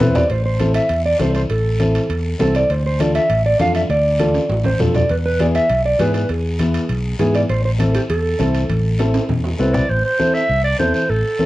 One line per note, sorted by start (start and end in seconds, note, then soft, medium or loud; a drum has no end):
0.00 0.24 E2 medium
0.00 0.21 C4 medium
0.00 0.21 E4 medium
0.00 0.06 A4 medium
0.00 0.21 B4 medium
0.00 low conga medium
0.00 short guiro medium
0.15 0.31 D5 medium
0.15 low conga loud
0.15 low timbale medium
0.15 short guiro medium
0.30 0.78 A1 medium
0.30 0.45 C5 medium
0.30 high conga soft
0.30 high timbale medium
0.30 long guiro medium
0.46 0.75 C5 medium
0.59 0.81 C4 medium
0.59 0.81 E4 medium
0.59 0.81 A4 medium
0.59 high conga medium
0.59 high timbale medium
0.59 short guiro medium
0.74 1.03 E5 medium
0.74 high timbale medium
0.74 short guiro medium
0.89 1.14 E2 medium
0.89 high conga soft
0.89 high timbale medium
0.89 long guiro medium
1.06 1.21 D5 medium
1.20 1.44 C2 medium
1.20 1.41 C4 medium
1.20 1.41 E4 medium
1.20 1.41 A4 medium
1.20 1.34 C5 medium
1.20 high conga medium
1.20 high timbale medium
1.20 low timbale medium
1.20 short guiro medium
1.35 1.41 C5 medium
1.35 high timbale medium
1.35 short guiro medium
1.50 1.98 A1 medium
1.50 2.40 A4 medium
1.50 high conga soft
1.50 high timbale medium
1.50 long guiro medium
1.79 2.01 C4 medium
1.79 2.01 E4 medium
1.79 2.01 A4 medium
1.79 high conga medium
1.79 high timbale medium
1.79 short guiro medium
1.95 high timbale medium
1.95 short guiro medium
2.09 2.34 E2 medium
2.09 high timbale medium
2.09 long guiro medium
2.39 2.63 C2 medium
2.39 2.61 C4 medium
2.39 2.61 E4 medium
2.39 2.61 A4 medium
2.39 2.54 A4 medium
2.39 high conga medium
2.39 high timbale medium
2.39 low timbale medium
2.39 short guiro medium
2.55 2.71 D5 medium
2.55 high timbale medium
2.55 short guiro medium
2.69 3.18 D2 loud
2.69 2.85 C5 medium
2.69 high conga soft
2.69 high timbale medium
2.69 long guiro medium
2.86 3.01 C5 medium
3.00 3.21 D4 medium
3.00 3.21 F4 medium
3.00 3.21 A4 medium
3.00 3.15 D5 medium
3.00 high conga medium
3.00 high timbale medium
3.00 short guiro medium
3.15 3.45 E5 loud
3.15 high timbale medium
3.15 short guiro medium
3.30 3.54 A1 medium
3.30 high conga soft
3.30 high timbale medium
3.30 long guiro medium
3.46 3.59 D5 medium
3.59 3.84 F2 medium
3.59 3.80 D4 medium
3.59 3.81 F4 medium
3.59 3.81 A4 medium
3.59 3.76 F5 loud
3.59 high conga medium
3.59 high timbale medium
3.59 low timbale medium
3.59 short guiro medium
3.75 3.81 E5 medium
3.75 high timbale medium
3.75 short guiro medium
3.89 4.38 D2 medium
3.89 4.65 D5 medium
3.89 high conga soft
3.89 high timbale medium
3.89 long guiro medium
4.19 4.40 D4 medium
4.19 4.41 F4 medium
4.19 4.41 A4 medium
4.19 high conga medium
4.19 high timbale medium
4.19 short guiro medium
4.34 high timbale medium
4.34 short guiro medium
4.49 4.73 A1 medium
4.49 high conga soft
4.49 low timbale medium
4.49 long guiro medium
4.64 4.80 C5 medium
4.64 high conga medium
4.64 high timbale medium
4.79 5.04 F2 medium
4.79 5.00 D4 medium
4.79 5.01 F4 medium
4.79 5.01 A4 medium
4.79 4.95 A4 medium
4.79 low conga medium
4.79 low timbale medium
4.79 short guiro medium
4.94 5.11 D5 medium
4.94 low conga medium
4.94 low timbale medium
4.94 short guiro medium
5.09 5.58 E2 medium
5.09 5.16 B4 medium
5.09 high conga soft
5.09 high timbale medium
5.09 long guiro medium
5.26 5.39 B4 medium
5.39 5.61 B3 medium
5.39 5.61 E4 medium
5.39 5.61 G#4 medium
5.39 5.46 D5 medium
5.39 high conga medium
5.39 high timbale medium
5.39 short guiro medium
5.55 5.85 E5 loud
5.55 high timbale medium
5.55 short guiro medium
5.69 5.94 B1 medium
5.69 high conga soft
5.69 high timbale medium
5.69 long guiro medium
5.85 6.00 D5 medium
5.99 6.24 G#2 medium
5.99 6.20 B3 medium
5.99 6.21 E4 medium
5.99 6.21 G#4 medium
5.99 6.14 B4 medium
5.99 high conga medium
5.99 high timbale medium
5.99 short guiro medium
6.14 6.30 B4 medium
6.14 high timbale medium
6.14 short guiro medium
6.29 6.77 E2 medium
6.29 7.19 G#4 medium
6.29 high conga soft
6.29 high timbale medium
6.29 long guiro medium
6.59 6.80 B3 medium
6.59 6.81 E4 medium
6.59 6.81 B4 medium
6.59 high conga medium
6.59 high timbale medium
6.59 short guiro medium
6.74 high timbale medium
6.74 short guiro medium
6.89 7.14 B1 medium
6.89 high conga soft
6.89 high timbale medium
6.89 long guiro medium
7.19 7.44 G#2 medium
7.19 7.41 B3 medium
7.19 7.41 E4 medium
7.19 7.35 G#4 medium
7.19 7.41 G#4 medium
7.19 high conga medium
7.19 high timbale medium
7.19 low timbale medium
7.19 short guiro medium
7.34 7.40 D5 medium
7.34 high timbale medium
7.34 short guiro medium
7.49 7.98 A1 loud
7.49 7.64 C5 medium
7.49 high conga soft
7.49 high timbale medium
7.49 long guiro medium
7.65 7.70 C5 medium
7.79 8.00 C4 medium
7.79 8.00 E4 medium
7.79 8.01 A4 medium
7.79 7.94 A4 medium
7.79 high conga medium
7.79 high timbale medium
7.79 short guiro medium
7.95 8.00 G4 medium
7.95 high timbale medium
7.95 short guiro medium
8.10 8.34 E2 medium
8.10 9.56 A4 medium
8.10 high conga soft
8.10 high timbale medium
8.10 long guiro medium
8.39 8.64 C2 medium
8.39 8.60 C4 medium
8.39 8.60 E4 medium
8.39 8.61 A4 medium
8.39 high conga medium
8.39 high timbale medium
8.39 short guiro medium
8.55 high timbale medium
8.55 short guiro medium
8.70 9.18 A1 medium
8.70 high conga medium
8.70 high timbale medium
8.70 long guiro medium
8.99 9.20 C4 medium
8.99 9.21 E4 medium
8.99 9.21 A4 medium
8.99 high timbale medium
8.99 short guiro medium
9.14 high timbale medium
9.14 short guiro medium
9.29 9.53 E2 medium
9.29 low conga medium
9.29 high timbale medium
9.29 long guiro medium
9.44 low timbale medium
9.59 9.84 C2 medium
9.59 9.80 C4 medium
9.59 9.81 E4 medium
9.59 9.76 A4 medium
9.59 9.81 B4 medium
9.59 low timbale medium
9.59 short guiro medium
9.74 9.91 D5 medium
9.74 low conga medium
9.74 low timbale medium
9.74 short guiro medium
9.89 10.01 A1 loud
9.89 10.04 C5 medium
9.89 high conga soft
9.89 long guiro medium
10.04 10.36 C5 medium
10.19 10.40 C4 medium
10.19 10.40 E4 medium
10.19 10.41 A4 medium
10.19 high conga medium
10.19 short guiro medium
10.34 10.64 E5 loud
10.34 short guiro medium
10.49 10.73 C2 medium
10.49 high conga soft
10.49 long guiro medium
10.64 10.78 D5 medium
10.79 10.92 E2 medium
10.79 11.00 C4 medium
10.79 11.01 E4 medium
10.79 11.01 A4 medium
10.79 10.93 C5 medium
10.79 high conga medium
10.79 short guiro medium
10.94 11.11 C5 medium
10.94 short guiro medium
11.09 11.22 A1 loud
11.09 11.46 A4 medium
11.09 high conga soft
11.09 long guiro medium
11.39 11.46 C4 medium
11.39 11.46 E4 medium
11.39 11.46 A4 medium
11.39 high conga medium
11.39 short guiro medium